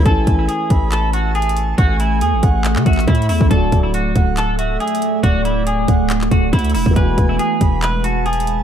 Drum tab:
HH |x-----------x-----------x-----------x-----------x-----------x-----------x---x---x---x-----------|x-----------x-----------x-----------x-----------x-----------x---x---x---x---x---x---o-----------|x-----------x-----------x-----------x-----------x-----------x-----------x---x---x---x-----------|x-----------x-----------x-----------x-----------x-----------x-----------x--x--x--x--o-----------|
CP |------------------------------------------------x-----------------------------------------------|------------------------------------------------x-----x-----------x-----------------------------|------------------------------------------------x-----------------------------------------------|------------------------------------------------x-----x-----------------------------------------|
BD |o-----------o-----------------------o-----------------------------------------------------------|o-----------------------------------o-----------------------o-----------o-----------------o-----|o-----------o-----------------------o-----------------------------------------------------------|o-----------------------------------o-----------------------o-----------o-----------------o-----|

HH |x-----------x-----------x-----------x-----------x-----------x-----------x---x---x---x-----------|
CP |------------------------------------------------x-----------------------------------------------|
BD |o-----------o-----------------------o-----------------------------------------------------------|